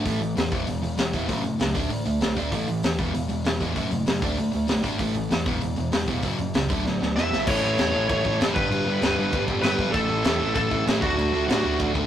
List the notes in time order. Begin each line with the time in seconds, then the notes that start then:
0.05 A1 A2 E3 A3, kick, open hi-hat
0.20 A1 A2 E3, open hi-hat
0.36 E2 A2 E3, snare, open hi-hat
0.51 E1 E2 B2 E3 G#3 B3, kick, open hi-hat
0.67 E1 E2 B2 E3 G#3, open hi-hat
0.82 E1 E2 B2 E3 G#3, open hi-hat
0.97 E1 E2 B2 E3 G#3, snare, open hi-hat
1.13 E1 E2 B2 E3 G#3 B3, kick, open hi-hat
1.28 F#1 F#2 C#3 F#3 A3 C#4, kick, open hi-hat
1.43 F#1 F#2 C#3 F#3 A3, open hi-hat
1.59 C#2 F#2 C#3 F#3 A3, snare, open hi-hat
1.75 D2 D3 A3 D4, kick, open hi-hat
1.90 A1 D3 A3, open hi-hat
2.05 D2 D3 A3, open hi-hat
2.21 B1 D3 A3, snare, open hi-hat
2.36 D2 D3 A3 D4, kick, open hi-hat
2.52 A1 A2 E3 A3, kick, open hi-hat
2.67 A1 A2 E3, open hi-hat
2.83 E2 A2 E3, snare, open hi-hat
2.98 E1 E2 B2 E3 G#3 B3, kick, open hi-hat
3.13 E1 E2 B2 E3 G#3, open hi-hat
3.28 E1 E2 B2 E3 G#3, open hi-hat
3.44 E1 E2 B2 E3 G#3, snare, open hi-hat
3.60 E1 E2 B2 E3 G#3 B3, kick, open hi-hat
3.74 F#1 F#2 C#3 F#3 A3 C#4, kick, open hi-hat
3.91 F#1 F#2 C#3 F#3 A3, open hi-hat
4.06 F#1 F#2 C#3 F#3 A3, snare, open hi-hat
4.22 D2 D3 A3 D4, kick, open hi-hat
4.36 A1 D3 A3, open hi-hat
4.52 D2 D3 A3, open hi-hat
4.67 B1 D3 A3, snare, open hi-hat
4.82 G#1 D3 A3 D4, kick, open hi-hat
4.99 A1 A2 E3 A3, kick, open hi-hat
5.13 A1 A2 E3, open hi-hat
5.29 E2 A2 E3, snare, open hi-hat
5.46 E1 E2 B2 E3 G#3 B3, kick, open hi-hat
5.61 E1 E2 B2 E3 G#3, open hi-hat
5.76 E1 E2 B2 E3 G#3, open hi-hat
5.92 E1 E2 B2 E3 G#3, snare, open hi-hat
6.07 E1 E2 B2 E3 G#3 B3, kick, open hi-hat
6.23 F#1 F#2 C#3 F#3, kick, open hi-hat
6.38 F#1 F#2 C#3, open hi-hat
6.54 C#2 F#2 C#3, snare, open hi-hat
6.69 D2 D3 F#3 A3 D4, kick, open hi-hat
6.84 A1 D3 F#3 A3, snare
7.00 D2 D3 F#3 A3, snare
7.16 E1 E2 B2 E3 G#3 B3 E5, snare
7.30 B1 E2 B2 E3 G#3 B3, snare
7.46 A1 A2 E3 A3 C#4 E4 A4 C#5, kick, crash
7.62 A1 A2 E3 A3 C#4 E4 A4
7.76 E2 A2 E3 A3 C#4 E4 A4, snare, crash
7.93 A1 A2 E3 A3 C#4 E4 A4
8.07 A1 A2 E3 A3 C#4 E4 A4 C#5, kick, crash
8.23 A2 E3 A3 C#4 E4 A4, kick
8.38 F#1 A2 E3 A3 C#4 E4 A4, snare, crash
8.53 G1 G2 D3 G3 B3 D4 G4 B4, kick
8.69 G1 G2 D3 G3 B3 D4 G4, crash
8.85 G1 G2 D3 G3 B3 D4 G4
9.01 D2 G2 D3 G3 B3 D4 G4, snare, crash
9.17 G1 G2 D3 G3 B3 D4 G4
9.31 G1 G2 D3 G3 B3 D4 G4, kick, crash
9.47 G2 D3 G3 B3 D4 G4, kick
9.62 G1 G2 D3 G3 B3 D4 G4 B4, snare, crash
9.77 G1 G2 D3 G3 B3 D4 G4, kick
9.92 A1 A2 E3 A3 C#4 E4 A4, kick, crash
10.08 A1 A2 E3 A3 C#4 E4
10.22 E2 A2 E3 A3 C#4 E4, snare, crash
10.38 A1 A2 E3 A3 C#4 E4
10.53 A1 A2 E3 A3 C#4 E4 A4, kick, crash
10.70 A2 E3 A3 C#4 E4, kick
10.85 A1 A2 E3 A3 C#4 E4, snare, crash
11.00 D2 D3 A3 D4 F#4, kick
11.16 D2 D3 A3 D4 F#4, crash
11.31 D2 D3 A3 D4 F#4
11.47 A2 D3 A3 D4 F#4, snare, crash
11.63 D2 D3 A3 D4 F#4
11.78 D2 D3 A3 D4 F#4, kick, crash
11.94 D3 A3 D4 F#4, kick